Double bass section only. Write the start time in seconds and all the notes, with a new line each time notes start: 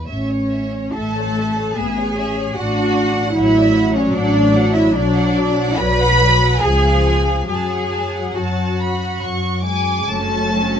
0.10 A1
0.97 A1
1.78 A1
2.57 A1
3.36 A1
4.15 A1
4.94 B1
5.78 B1
6.61 C#2
7.48 F#2
8.36 F#2
9.24 F#2
10.09 F#1